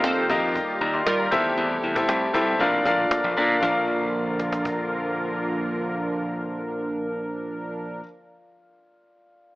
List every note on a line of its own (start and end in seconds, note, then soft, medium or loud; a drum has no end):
0.00 0.10 D#2 loud
0.00 1.31 D#3 medium
0.00 1.31 G3 medium
0.00 1.28 A#3 medium
0.00 0.24 C4 loud
0.00 0.29 F4 loud
0.00 1.28 F4 medium
0.00 0.30 G4 medium
0.00 2.58 G4 medium
0.00 0.24 A4 loud
0.00 0.30 A#4 medium
0.00 0.24 C5 loud
0.00 0.30 D#5 medium
0.00 0.31 F5 loud
0.00 cajon slap loud
0.17 cajon slap soft
0.29 0.58 F2 medium
0.29 0.77 F4 loud
0.29 0.77 G4 medium
0.29 0.77 A#4 medium
0.29 0.77 D#5 medium
0.29 0.77 F5 loud
0.29 cajon bass medium
0.43 cajon slap soft
0.56 cajon bass loud
0.56 cajon slap medium
0.81 1.00 D#2 medium
0.81 0.93 D5 medium
0.81 0.93 A#5 medium
0.81 cajon slap soft
0.94 1.18 D#5 medium
0.94 1.18 C6 medium
0.94 cajon slap soft
1.06 1.27 G3 loud
1.06 1.27 F4 loud
1.06 1.27 A#4 loud
1.06 cajon slap loud
1.19 1.44 D5 medium
1.19 1.44 A#5 medium
1.19 cajon slap soft
1.31 1.51 E2 loud
1.31 2.59 C3 medium
1.31 2.59 G3 medium
1.31 2.59 A3 medium
1.31 1.91 E4 loud
1.31 2.59 E4 medium
1.31 1.91 G4 medium
1.31 1.91 A4 medium
1.31 1.91 C5 medium
1.31 1.91 E5 loud
1.31 cajon bass loud
1.57 1.77 E2 loud
1.57 cajon slap soft
1.70 cajon slap soft
1.83 2.02 E2 medium
1.83 cajon slap soft
1.95 2.31 E4 medium
1.95 2.31 G4 medium
1.95 2.31 A4 medium
1.95 2.32 C5 medium
1.95 2.32 E5 medium
1.95 cajon bass loud
2.09 2.28 C2 loud
2.09 cajon slap loud
2.21 cajon slap soft
2.34 2.54 C2 medium
2.34 2.60 E4 medium
2.34 2.60 G4 medium
2.34 2.60 A4 medium
2.34 2.60 C5 medium
2.34 2.60 E5 loud
2.34 cajon bass medium
2.59 2.79 A#1 loud
2.59 3.62 D3 medium
2.59 3.62 F3 medium
2.59 3.62 A#3 medium
2.59 2.83 D4 loud
2.59 2.84 F4 medium
2.59 3.62 F4 medium
2.59 2.84 A#4 medium
2.59 3.62 A#4 medium
2.59 2.84 D5 medium
2.59 2.84 F5 loud
2.59 cajon slap medium
2.73 cajon slap soft
2.85 3.05 A#1 loud
2.85 3.33 D4 medium
2.85 3.33 F4 medium
2.85 3.33 A#4 medium
2.85 3.33 D5 medium
2.85 3.33 F5 loud
2.85 cajon bass medium
3.11 muted slap bass stroke soft
3.11 cajon slap loud
3.24 3.34 A#1 loud
3.37 3.56 A#2 loud
3.37 3.60 D4 medium
3.37 3.59 F4 medium
3.37 3.60 A#4 medium
3.37 3.61 D5 medium
3.37 3.61 F5 loud
3.50 cajon slap soft
3.60 8.01 A#1 loud
3.60 8.01 D3 medium
3.60 8.01 F3 loud
3.60 8.01 F3 medium
3.60 8.01 A#3 medium
3.60 8.01 D4 medium
3.60 7.99 F4 medium
3.60 8.01 F4 medium
3.60 8.00 A#4 medium
3.60 8.01 A#4 loud
3.60 8.01 A#4 medium
3.60 8.02 D5 medium
3.60 cajon bass loud
3.65 8.03 F5 loud
4.39 cajon slap medium
4.52 cajon slap medium
4.65 cajon bass medium